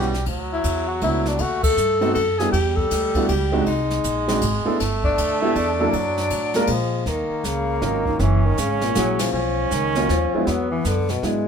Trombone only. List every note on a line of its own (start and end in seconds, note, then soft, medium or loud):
0.00 0.28 G3 loud
0.28 1.41 F#3 loud
1.40 2.09 A3 loud
2.53 3.62 G3 loud
3.67 4.82 G#3 loud
4.80 5.92 A3 loud
5.93 6.65 F#3 loud
6.69 7.04 G#3 medium
7.06 8.21 A#3 medium
8.20 9.32 C#4 loud
9.33 10.49 C#4 loud
10.48 11.17 B3 medium